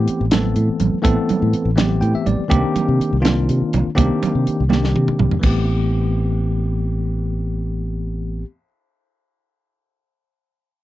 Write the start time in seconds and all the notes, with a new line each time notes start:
Already playing: E3 A3 B3 C4 G4
0.08 muted fingered electric bass stroke, closed hi-hat
0.21 A1
0.31 E3 A3 B3 C4 A4, snare, closed hi-hat, high conga, low conga
0.44 low conga
0.56 A2, closed hi-hat, low conga
0.69 muted fingered electric bass stroke
0.80 A1, closed hi-hat, low conga
0.94 muted fingered electric bass stroke
1.02 A1 E3 A3 B3 C4 A4, kick, closed hi-hat, high conga
1.29 muted fingered electric bass stroke, closed hi-hat, low conga
1.42 A2, low conga
1.53 muted fingered electric bass stroke, closed hi-hat
1.65 A1
1.76 E3 A3 B3 C4 G4, snare, closed hi-hat, high conga, low conga
1.91 low conga
2.01 A2 G5, closed hi-hat, low conga
2.15 E5, muted fingered electric bass stroke
2.26 A1 D5, closed hi-hat, low conga
2.40 muted fingered electric bass stroke
2.48 C2 D#3 A#3 C4 D4 G4, kick, closed hi-hat, high conga
2.76 muted fingered electric bass stroke, closed hi-hat, low conga
2.88 C3, low conga
3.00 muted fingered electric bass stroke, closed hi-hat
3.13 C2
3.21 D#3 A#3 C4 D4 F4
3.25 snare, closed hi-hat, high conga, low conga
3.49 C3, closed hi-hat, low conga
3.62 muted fingered electric bass stroke
3.73 C2, closed hi-hat, low conga
3.95 C2 D#3 A#3 C4 D4 G4, kick, closed hi-hat, high conga
4.23 muted fingered electric bass stroke, closed hi-hat, low conga
4.35 C3
4.46 muted fingered electric bass stroke, closed hi-hat, low conga
4.60 C2
4.69 D#3 A#3 C4 D4 G4, snare, high conga, low conga
4.84 snare
4.96 C3, high tom
5.08 muted fingered electric bass stroke, mid tom
5.19 C2, mid tom, low conga
5.31 muted fingered electric bass stroke, floor tom
5.39 E3 A3 B3, crash, high conga
5.43 A1 C4 G4, kick